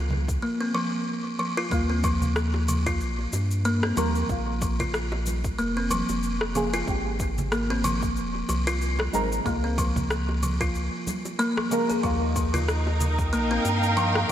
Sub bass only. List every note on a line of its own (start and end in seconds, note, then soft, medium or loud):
0.00 0.38 C#2 loud
1.71 3.02 D#2 loud
3.01 3.27 A#1 medium
3.33 3.93 G2 loud
3.97 4.24 D#2 medium
4.29 5.54 A#1 loud
5.59 6.03 F1 loud
6.09 6.83 F1 loud
6.87 8.18 G#1 loud
8.17 8.43 D#1 medium
8.49 9.09 C2 loud
9.14 9.40 G#1 medium
9.46 10.70 C#2 medium
10.75 10.89 C#2 medium
12.04 13.34 D#2 loud
13.33 13.59 A#1 medium
13.65 14.25 G2 loud